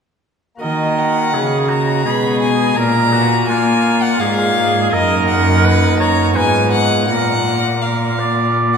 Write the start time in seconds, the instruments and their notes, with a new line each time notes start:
0.56 pipe organ A#3 F#4 D#5
0.61 pipe organ D#3, cello D#3, oboe A#4, violin D#5
0.98 violin F#5
1.33 cello C#3, pipe organ C#3, oboe G#4
1.69 oboe F#4, violin A#5
2.02 cello B2, pipe organ G#3 G#4 D#5, oboe G#4
2.06 pipe organ B2, violin B5
2.41 violin G#5
2.73 cello A#2, pipe organ A#3 F4 D5, violin A#5
2.77 pipe organ A#2, oboe A#4
3.13 oboe F#4
3.48 cello A#3, pipe organ A#3, oboe F4, violin G#5
4.02 violin F#5
4.16 pipe organ A#3 F4 D5, violin F5
4.21 cello G#2, pipe organ G#2, oboe G#4
4.88 pipe organ A#3 D#4 D#5, violin D#5
4.92 cello F#2, pipe organ F#2, oboe A#4
5.28 violin F#5
5.64 oboe B4
6.00 oboe C#5, violin A#5
6.31 pipe organ B3 F4 D#5
6.35 pipe organ G#2, cello G#2, oboe B4, violin G#5
6.72 violin F#5
7.05 cello A#2, pipe organ A#3 F4 D5, violin F#5
7.10 pipe organ A#2, oboe A#4
7.82 oboe A#4, violin F5
8.19 oboe D5
8.74 violin F#5